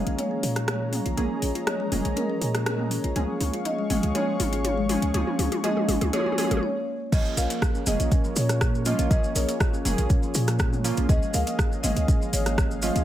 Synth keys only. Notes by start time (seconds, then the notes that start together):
Already playing: F3 A#3 C#4 G#4
1.17 F3 A#3 C#4 G#4
1.92 F3 A#3 C#4 G#4
3.16 F3 G#3 C#4 G#4
3.90 F3 G#3 C#4 G#4
4.15 F3 G#3 C#4 G#4
4.89 F3 G#3 C#4 G#4
5.14 F3 G#3 C#4 G#4
5.64 F3 G#3 C#4 G#4
6.13 F3 G#3 C#4 G#4
6.38 F3 G#3 C#4 G#4
7.12 F3 A#3 C#4 G#4
7.87 F3 A#3 C#4 G#4
8.86 F3 A#3 C#4 F4
9.11 F3 A#3 C#4 G#4
9.85 F3 A#3 C#4 G#4
10.84 F3 A#3 C#4 F4
11.09 F3 G#3 C#4 G#4
11.84 F3 G#3 C#4 G#4
12.83 F3 G#3 C#4 F4